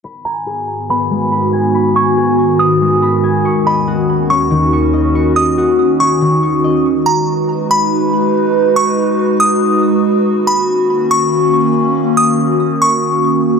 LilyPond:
<<
  \new Staff \with { instrumentName = "Synth bell" } { \time 4/4 \key gis \minor \tempo 4 = 141 r8 ais''8 r4 b''2 | r8 cis'''8 r4 dis'''2 | r8 b''8 r4 cis'''2 | r8 dis'''8 r4 cis'''2 |
r8 ais''8 r4 b''2 | r8 cis'''8 r4 dis'''2 | r8 b''8 r4 cis'''2 | r8 dis'''8 r4 cis'''2 | }
  \new Staff \with { instrumentName = "Harp" } { \time 4/4 \key gis \minor b''8 gis''8 gis'4 b8 gis8 b''8 gis''8 | b''8 gis''8 gis'4 b8 gis8 b''8 gis''8 | cis'''8 dis''8 fis'4 cis'8 dis8 cis'''8 dis''8 | cis'''8 dis''8 fis'4 cis'8 dis8 cis'''8 dis''8 |
r1 | r1 | r1 | r1 | }
  \new Staff \with { instrumentName = "Ambient pad" } { \time 4/4 \key gis \minor << { <gis, b fis'>1~ | <gis, b fis'>1 | <dis, cis' fis'>1~ | <dis, cis' fis'>1 |
<gis fis' b'>1~ | <gis fis' b'>1 | <dis cis'>1~ | <dis cis'>1 | } \\ { dis1~ | dis1~ | dis1~ | dis1 |
dis'1~ | dis'1 | ais1~ | ais1 | } >> }
>>